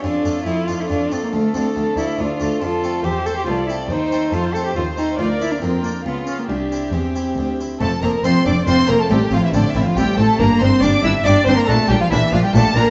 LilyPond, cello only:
\new Staff \with { instrumentName = "Cello" } { \time 3/4 \key d \minor \tempo 4 = 140 d'4 e'8 f'16 e'16 d'8 c'16 bes16 | a8 c'8 a8 e'8 d'8 r8 | \key f \major f'4 g'8 a'16 g'16 f'8 e'8 | ees'4 f'8 a'16 g'16 f'8 ees'8 |
f'8 e'16 d'16 c'8 bes8 ces'8 des'16 bes16 | d'4 c'4. r8 | a8 bes8 c'8 d'8 c'8 bes16 a16 | g8 f16 e16 d8 e16 f16 g8 a8 |
bes8 c'8 d'8 e'8 d'8 c'16 bes16 | a8 g16 f16 e8 f16 g16 a8 bes8 | }